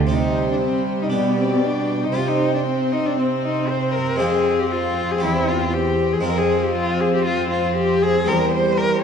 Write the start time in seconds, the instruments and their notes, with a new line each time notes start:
0.07 harpsichord C3 C4 G4, cello section C3, cello D#4, violin section C5 G5
0.11 viola section G3
0.51 cello D4
0.62 cello C4
1.02 cello D#4
1.10 harpsichord B2 D4 G4, cello section B2, cello B3, violin section D5
1.39 cello C4
1.65 cello D4
2.04 cello D#4
2.13 harpsichord C3 C4 G4, cello section C3, viola section C4, cello F4, violin section C5
2.28 cello D#4
2.54 cello D4
2.67 cello C4
2.92 cello D#4
3.06 cello D4
3.17 cello C4
3.43 cello D#4
3.69 cello C5
3.95 cello A#4
4.16 harpsichord G#3 C4 F4, cello G#4
4.20 cello section F2, harpsichord F2, violin section F5
4.59 cello G4
4.71 cello F4
5.11 cello G#4
5.18 cello section E2, harpsichord C4 G4
5.23 harpsichord E2, cello E4, violin section G5
5.48 cello F4
5.73 cello G4
6.13 cello G#4
6.21 harpsichord G#3 C4 F4
6.25 cello section F2, harpsichord F2, viola section C4, cello A#4, violin section C5 F5
6.38 cello G#4
6.64 cello G4
6.76 cello F4
7.00 cello G#4
7.15 cello G4
7.26 cello F4
7.51 cello F4
7.77 cello G4
8.03 cello G#4
8.25 cello section E2, harpsichord E2 C4 G4, viola section G3, cello A#4, violin section G5
8.52 cello C5
8.77 cello A#4